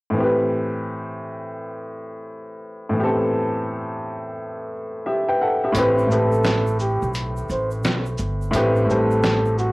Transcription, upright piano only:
0.10 A2 E3
0.17 C4 G4
0.24 B4
2.89 A2 E3
2.96 B3 G4
3.03 C4 A4
5.06 G4 E5
5.28 B4 G5
5.41 A4 F#5
5.64 G4 E5
5.72 A2 A3 C4
5.78 G4 B4
6.07 A2 A3 C4
6.12 G4 B4
8.51 A2 A3 C4
8.56 G4 B4
8.85 A2 A3 C4
8.90 G3 C5

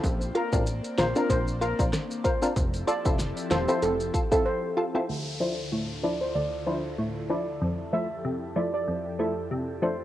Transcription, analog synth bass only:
0.04 A#1
0.53 A1
0.98 A#1
1.30 A#1
1.79 A#1
2.56 F1
3.05 F1
3.51 E1
3.83 F1

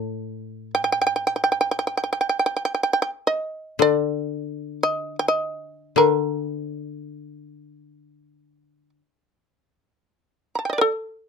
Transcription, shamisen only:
Already playing: A5
0.75 G5
0.84 G5
0.92 G5
1.01 G5
1.07 G5
1.16 G5
1.27 G5
1.36 G5
1.44 G5
1.52 G5
1.61 G5
1.71 G5
1.79 G5
1.87 G5
1.97 G5
2.04 G5
2.13 G5
2.21 G5
2.29 G5
2.39 G5
2.46 G5
2.56 G5
2.65 G5
2.75 G5
2.83 G5
2.93 G5
3.02 G5
3.27 D#5
3.82 D5
4.83 D#5
5.19 G5
5.28 D#5
5.98 A#4
6.42 B4
6.59 C5
6.75 C#5
6.92 D5
10.55 A5 A#5
10.65 G5
10.70 D5 D#5
10.78 A4 A#4

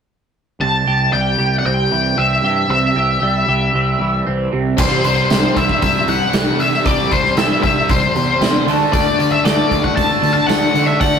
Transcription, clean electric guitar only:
0.61 C3
0.88 G4
1.13 G3
1.39 G4
1.66 C4
1.92 E3
2.18 C4
2.44 G4
2.70 C3
2.96 G4
3.22 G3
3.49 G4
3.75 C4
4.01 E3
4.27 C4
4.52 C3
4.78 C3 E3 G3
5.04 C3 E3
5.31 C3 E3 G3
5.56 C3 E3
5.82 C3 E3
6.08 C3 E3
6.33 C3 E3 G3
6.60 C3 E3
6.86 C3 E3 G3
7.13 C3 E3
7.38 C3 E3 G3
7.64 C3 E3
7.90 C3 E3
8.16 C3 E3
8.41 C3 E3 G3
8.68 D3 A3 D4
8.94 D3 A3 D4
9.20 D3 A3
9.45 D3 A3 D4
9.70 D3 A3
9.96 D3 A3
10.22 D3 A3
10.48 D3 A3 D4
10.75 D3 A3
11.00 D3 A3 D4

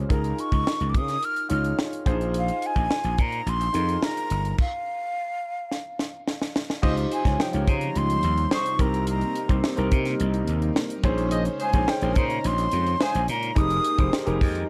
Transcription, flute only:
0.12 A#5
0.40 C#6
0.89 D6
0.97 D#6
1.25 F6
1.51 F6
2.38 F5
2.66 G#5
3.21 A#5
3.49 C6
4.04 A#5
4.61 F5
7.13 G#5
7.41 G5
7.69 A#5
7.97 C6
8.54 C#6
8.82 A#5
9.10 A#5
11.62 G#5
11.90 G5
12.18 A#5
12.47 C6
13.03 G#5
13.30 A#5
13.58 D#6

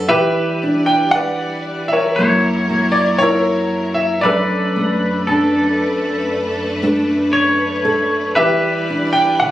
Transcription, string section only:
0.09 G3 E4 D5
2.15 F#3 A#4
4.24 F#2 A3 D4 B4
8.35 G3 E4 D5

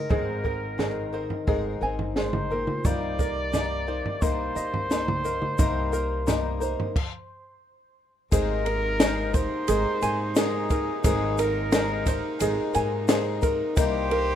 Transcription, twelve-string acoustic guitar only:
0.09 G#3 C4 D#4 A#4
0.44 C4 D#4 A#4
0.78 G#3 C4 D#4 A#4
1.13 C4 D#4 A#4
1.47 G#3 C4 D#4 A#4
1.81 C4 D#4 A#4
2.16 G#3 C4 D#4 A#4
2.50 C4 D#4 A#4
2.85 C3 G3 A#3 D#4 A#4
3.19 A#3 D#4 A#4
3.53 G3 A#3 D#4 A#4
3.87 A#3 D#4 A#4
4.21 C3 G3 A#3 D#4 A#4
4.55 A#3 D#4 A#4
4.90 G3 A#3 D#4 A#4
5.24 A#3 D#4 A#4
5.58 C3 G3 A#3 D#4 A#4
5.92 A#3 D#4 A#4
6.27 G3 A#3 D#4 A#4
6.60 A#3 D#4 A#4
8.31 G#3 C4 D#4 A#4
8.65 C4 D#4 A#4
9.00 G#3 C4 D#4 A#4
9.33 C4 D#4 A#4
9.68 G#3 C4 D#4 A#4
10.02 C4 D#4 A#4
10.36 G#3 C4 D#4 A#4
10.70 C4 D#4 A#4
11.04 G#3 C4 D#4 A#4
11.38 C4 D#4 A#4
11.72 G#3 C4 D#4 A#4
12.05 C4 D#4 A#4
12.39 G#3 C4 D#4 A#4
12.74 C4 D#4 A#4
13.08 G#3 C4 D#4 A#4
13.42 C4 D#4 A#4
13.76 C3 G3 A#3 D#4 A#4
14.10 A#3 D#4 A#4

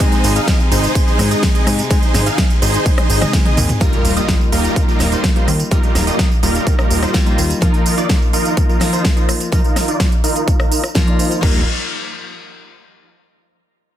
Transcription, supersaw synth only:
0.00 D#4 G#4 C5
0.36 D#4 G#4 F5
0.72 D#4 G#4 C5
1.07 D#4 G#4 C5
1.31 D#4 G#4 D#5
1.55 D#4 G#4 D#5
1.91 D#4 G#4 C5
2.26 D#4 G#4 F5
2.62 D#4 G#4 C5
2.98 D#4 G#4 C5
3.21 D#4 G#4 D#5
3.45 D#4 G#4 D#5
3.81 G3 A#3 D#4 F4 A#4
4.17 G3 A#3 D#4 F4 D#5
4.52 G3 A#3 D#4 F4 A#4
4.88 G3 A#3 D#4 F4 A#4
5.12 G3 A#3 D#4 F4 C5
5.36 G3 A#3 D#4 F4 C5
5.71 G3 A#3 D#4 F4 A#4
6.07 G3 A#3 D#4 F4 D#5
6.43 G3 A#3 D#4 F4 A#4
6.79 G3 A#3 D#4 F4 A#4
7.02 G3 A#3 D#4 F4 C5
7.26 G3 A#3 D#4 F4 C5
7.62 D#4 F4 A#4
7.98 D#4 F4 D5
8.33 D#4 F4 A#4
8.69 D#4 F4 A#4
8.93 D#4 F4 C5
9.17 D#4 F4 C5
9.52 D#4 F4 A#4
9.88 D#4 F4 D5
10.24 D#4 F4 A#4
10.59 D#4 F4 A#4
11.07 D#4 F4 D5
11.19 D#4 F4 C5
11.43 G3 A#3 D#4 F4 A#4

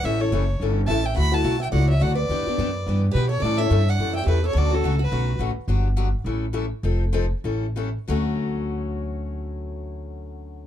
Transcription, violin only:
0.05 E5
0.21 C#5
0.87 A5
1.05 G5
1.17 B5
1.33 A5
1.62 G5
1.73 F#5
1.90 E5
2.02 F#5
2.16 D5
3.13 B4
3.29 C#5
3.42 D5
3.58 E5
3.90 F#5
4.16 G5
4.28 B4
4.47 C#5
4.58 D5
4.74 A4
5.03 B4

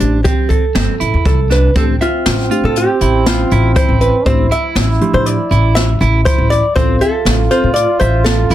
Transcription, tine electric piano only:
0.00 A3 D4 G4
1.75 A3 D4 G4
2.51 A3 D4 G4
4.25 A3 D4 G4
5.01 A3 D4 G4
6.75 C4 F4 A4
7.51 C4 F4 A4

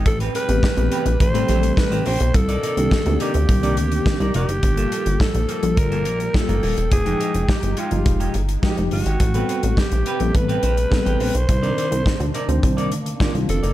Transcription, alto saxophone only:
0.07 A4
0.36 B4
1.21 C5
1.79 B4
2.07 C5
2.35 A4
3.21 G4
4.36 G4
5.21 A4
5.78 A#4
6.35 A4
6.92 G#4
7.49 G4
7.78 F4
8.93 F#4
9.78 G4
10.36 B4
11.36 C5
13.50 A4

